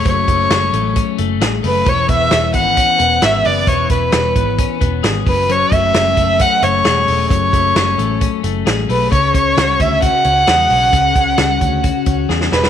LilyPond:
<<
  \new Staff \with { instrumentName = "Violin" } { \time 4/4 \key fis \minor \tempo 4 = 132 cis''2 r4. b'8 | cis''8 e''4 fis''4. e''8 d''8 | cis''8 b'2 r4 b'8 | cis''8 e''4. fis''8 cis''4. |
cis''2 r4. b'8 | cis''8 cis''4 e''8 fis''2~ | fis''2. r8 b'8 | }
  \new Staff \with { instrumentName = "Clean electric guitar" } { \time 4/4 \key fis \minor <fis, a cis' gis'>8 a8 cis'8 a8 cis'8 a8 gis'8 a8 | e8 b8 cis'8 b8 cis'8 b8 fis'16 gis'16 b8 | e8 b8 cis'8 b8 cis'8 b8 gis'8 fis,8 | fis,8 a8 cis'8 a8 cis'8 a8 gis'8 a8 |
fis,8 a8 cis'8 a8 cis'8 a8 gis'8 a8 | cis8 cis'8 fis'8 cis'8 fis'8 cis'8 gis'8 cis'8 | cis8 cis'8 fis'8 cis'8 fis'8 cis'8 gis'8 cis'8 | }
  \new Staff \with { instrumentName = "Picked electric bass" } { \clef bass \time 4/4 \key fis \minor fis,,8 fis,,8 fis,,8 a,,8. r16 fis,,8 a,,8 fis,,8 | e,,8 e,,8 e,,8 gis,,8. r16 e,,8 gis,,8 fis,,8 | e,,8 e,,8 e,,8 gis,,8. r16 e,,8 gis,,8 fis,,8~ | fis,,8 fis,,8 fis,,8 fis,,8. r16 fis,,8 e,,8 e,,8 |
fis,,8 fis,,8 fis,,8 a,,8. r16 fis,,8 a,,8 b,,8 | cis,8 cis,8 cis,8 d,8. r16 cis,8 e,8 b,,8 | cis,8 cis,8 cis,8 d,8. r16 cis,8 e,8 e,,8 | }
  \new DrumStaff \with { instrumentName = "Drums" } \drummode { \time 4/4 <hh bd>8 <hh bd>8 <hh sn>8 hh8 <hh bd>8 hh8 <hh sn>8 hho8 | <hh bd>8 <hh bd>8 <hh sn>8 <hh bd>8 <hh bd>8 hh8 <hh sn>8 hho8 | <hh bd>8 <hh bd>8 <hh sn>8 <hh bd>8 <hh bd>8 <hh bd>8 <hh sn>8 <hho bd>8 | hh8 <hh bd>8 <hh sn>8 <hh bd>8 <hh bd>8 hh8 <hh sn>8 hho8 |
<hh bd>8 <hh bd>8 <hh sn>8 hh8 <hh bd>8 hh8 <hh sn>8 hho8 | <hh bd>8 <hh bd>8 <hh sn>8 <hh bd>8 <hh bd>8 hh8 <hh sn>8 hho8 | <hh bd>8 <hh bd>8 <hh sn>8 <hh bd>8 <hh bd>8 <hh bd>8 sn16 sn16 sn16 sn16 | }
>>